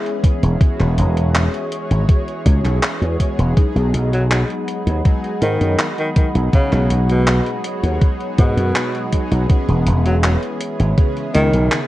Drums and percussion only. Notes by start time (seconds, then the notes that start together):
0.06 closed hi-hat
0.24 kick, closed hi-hat
0.43 closed hi-hat
0.61 kick, closed hi-hat
0.80 clap, closed hi-hat
0.98 closed hi-hat
1.17 closed hi-hat
1.35 clap, closed hi-hat
1.54 closed hi-hat
1.72 closed hi-hat
1.91 closed hi-hat
2.09 kick, closed hi-hat
2.28 closed hi-hat
2.46 kick, closed hi-hat
2.65 clap, closed hi-hat
2.83 clap, closed hi-hat
3.02 closed hi-hat
3.20 kick, closed hi-hat
3.39 closed hi-hat
3.57 kick, closed hi-hat
3.76 closed hi-hat
3.94 closed hi-hat
4.13 closed hi-hat
4.31 clap, closed hi-hat
4.50 closed hi-hat
4.68 closed hi-hat
4.87 closed hi-hat
5.05 kick, closed hi-hat
5.24 closed hi-hat
5.42 closed hi-hat
5.61 closed hi-hat
5.79 clap, closed hi-hat
5.98 closed hi-hat
6.16 kick, closed hi-hat
6.35 closed hi-hat
6.53 kick, closed hi-hat
6.73 clap, closed hi-hat
6.90 closed hi-hat
7.09 closed hi-hat
7.27 clap, closed hi-hat
7.46 closed hi-hat
7.64 closed hi-hat
7.83 closed hi-hat
8.01 kick, closed hi-hat
8.20 closed hi-hat
8.38 kick, closed hi-hat
8.57 closed hi-hat
8.75 clap, closed hi-hat
8.95 closed hi-hat
9.12 kick, closed hi-hat
9.32 closed hi-hat
9.50 kick, closed hi-hat
9.69 closed hi-hat
9.87 closed hi-hat
10.06 closed hi-hat
10.24 clap, closed hi-hat
10.43 closed hi-hat
10.61 closed hi-hat
10.80 closed hi-hat
10.98 kick, closed hi-hat
11.17 closed hi-hat
11.35 closed hi-hat
11.54 closed hi-hat
11.72 clap, closed hi-hat